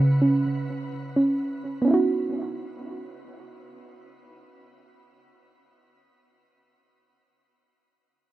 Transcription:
0, 0, Header, 1, 2, 480
1, 0, Start_track
1, 0, Key_signature, 4, "minor"
1, 0, Tempo, 500000
1, 7990, End_track
2, 0, Start_track
2, 0, Title_t, "Synth pluck"
2, 0, Program_c, 0, 84
2, 0, Note_on_c, 0, 49, 93
2, 0, Note_on_c, 0, 61, 81
2, 196, Note_off_c, 0, 61, 0
2, 207, Note_on_c, 0, 61, 79
2, 1105, Note_off_c, 0, 61, 0
2, 1117, Note_on_c, 0, 61, 81
2, 1347, Note_off_c, 0, 49, 0
2, 1744, Note_on_c, 0, 59, 86
2, 1762, Note_off_c, 0, 61, 0
2, 1773, Note_on_c, 0, 61, 76
2, 1802, Note_on_c, 0, 63, 77
2, 1831, Note_on_c, 0, 64, 79
2, 1859, Note_on_c, 0, 66, 96
2, 6348, Note_off_c, 0, 59, 0
2, 6377, Note_off_c, 0, 61, 0
2, 6405, Note_off_c, 0, 63, 0
2, 6434, Note_off_c, 0, 64, 0
2, 6463, Note_off_c, 0, 66, 0
2, 7990, End_track
0, 0, End_of_file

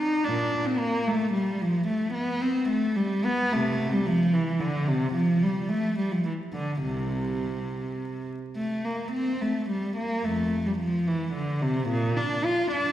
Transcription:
0, 0, Header, 1, 2, 480
1, 0, Start_track
1, 0, Key_signature, 0, "major"
1, 0, Tempo, 544465
1, 227, Time_signature, 3, 2, 24, 8
1, 5506, Tempo, 578035
1, 7429, Key_signature, -1, "major"
1, 7906, Tempo, 550964
1, 11205, End_track
2, 0, Start_track
2, 0, Title_t, "Cello"
2, 0, Program_c, 0, 42
2, 0, Note_on_c, 0, 63, 77
2, 216, Note_on_c, 0, 62, 69
2, 217, Note_off_c, 0, 63, 0
2, 219, Note_on_c, 0, 46, 59
2, 556, Note_off_c, 0, 46, 0
2, 579, Note_on_c, 0, 60, 71
2, 580, Note_off_c, 0, 62, 0
2, 698, Note_on_c, 0, 58, 80
2, 700, Note_off_c, 0, 60, 0
2, 939, Note_off_c, 0, 58, 0
2, 943, Note_on_c, 0, 57, 80
2, 1180, Note_on_c, 0, 55, 71
2, 1183, Note_off_c, 0, 57, 0
2, 1417, Note_off_c, 0, 55, 0
2, 1424, Note_on_c, 0, 53, 81
2, 1659, Note_on_c, 0, 57, 68
2, 1663, Note_off_c, 0, 53, 0
2, 1890, Note_on_c, 0, 59, 73
2, 1892, Note_off_c, 0, 57, 0
2, 2125, Note_off_c, 0, 59, 0
2, 2128, Note_on_c, 0, 60, 83
2, 2371, Note_off_c, 0, 60, 0
2, 2375, Note_on_c, 0, 57, 82
2, 2610, Note_on_c, 0, 55, 81
2, 2613, Note_off_c, 0, 57, 0
2, 2858, Note_off_c, 0, 55, 0
2, 2862, Note_on_c, 0, 59, 93
2, 3104, Note_off_c, 0, 59, 0
2, 3110, Note_on_c, 0, 48, 69
2, 3111, Note_on_c, 0, 57, 83
2, 3438, Note_off_c, 0, 48, 0
2, 3464, Note_off_c, 0, 57, 0
2, 3468, Note_on_c, 0, 55, 73
2, 3578, Note_on_c, 0, 53, 89
2, 3582, Note_off_c, 0, 55, 0
2, 3813, Note_off_c, 0, 53, 0
2, 3820, Note_on_c, 0, 52, 77
2, 4055, Note_off_c, 0, 52, 0
2, 4055, Note_on_c, 0, 50, 78
2, 4296, Note_off_c, 0, 50, 0
2, 4298, Note_on_c, 0, 48, 79
2, 4536, Note_on_c, 0, 53, 76
2, 4538, Note_off_c, 0, 48, 0
2, 4771, Note_off_c, 0, 53, 0
2, 4782, Note_on_c, 0, 55, 71
2, 5016, Note_on_c, 0, 57, 81
2, 5019, Note_off_c, 0, 55, 0
2, 5258, Note_off_c, 0, 57, 0
2, 5270, Note_on_c, 0, 55, 69
2, 5384, Note_off_c, 0, 55, 0
2, 5393, Note_on_c, 0, 53, 64
2, 5510, Note_off_c, 0, 53, 0
2, 5511, Note_on_c, 0, 52, 55
2, 5578, Note_off_c, 0, 52, 0
2, 5751, Note_on_c, 0, 50, 66
2, 5981, Note_off_c, 0, 50, 0
2, 5990, Note_on_c, 0, 36, 46
2, 5991, Note_on_c, 0, 48, 61
2, 6673, Note_off_c, 0, 36, 0
2, 7170, Note_off_c, 0, 48, 0
2, 7430, Note_on_c, 0, 57, 65
2, 7651, Note_off_c, 0, 57, 0
2, 7668, Note_on_c, 0, 58, 64
2, 7896, Note_on_c, 0, 60, 73
2, 7906, Note_off_c, 0, 58, 0
2, 8141, Note_off_c, 0, 60, 0
2, 8148, Note_on_c, 0, 57, 65
2, 8390, Note_off_c, 0, 57, 0
2, 8395, Note_on_c, 0, 55, 61
2, 8627, Note_off_c, 0, 55, 0
2, 8636, Note_on_c, 0, 58, 76
2, 8867, Note_off_c, 0, 58, 0
2, 8867, Note_on_c, 0, 41, 50
2, 8868, Note_on_c, 0, 57, 69
2, 9203, Note_off_c, 0, 41, 0
2, 9229, Note_off_c, 0, 57, 0
2, 9238, Note_on_c, 0, 55, 62
2, 9350, Note_on_c, 0, 53, 69
2, 9353, Note_off_c, 0, 55, 0
2, 9583, Note_off_c, 0, 53, 0
2, 9593, Note_on_c, 0, 52, 72
2, 9822, Note_on_c, 0, 50, 71
2, 9829, Note_off_c, 0, 52, 0
2, 10060, Note_off_c, 0, 50, 0
2, 10067, Note_on_c, 0, 48, 81
2, 10308, Note_off_c, 0, 48, 0
2, 10312, Note_on_c, 0, 46, 86
2, 10545, Note_off_c, 0, 46, 0
2, 10553, Note_on_c, 0, 62, 67
2, 10789, Note_off_c, 0, 62, 0
2, 10795, Note_on_c, 0, 65, 81
2, 11030, Note_off_c, 0, 65, 0
2, 11032, Note_on_c, 0, 62, 80
2, 11205, Note_off_c, 0, 62, 0
2, 11205, End_track
0, 0, End_of_file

